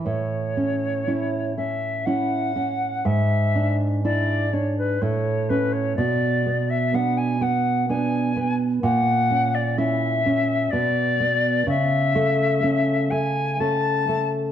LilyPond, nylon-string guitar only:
\new Staff \with { instrumentName = "Nylon-string guitar" } { \time 3/4 \key a \major \tempo 4 = 62 a,8 cis'8 <cis' e'>8 cis'8 <cis' e'>8 cis'8 | gis,8 d'8 <d' e'>8 d'8 a,8 cis'8 | b,8 b8 <b d'>8 b8 <b d'>8 b8 | ais,8 cis'8 <cis' e'>8 cis'8 b,8 b8 |
cis8 a8 <a cis'>8 a8 <a cis'>8 a8 | }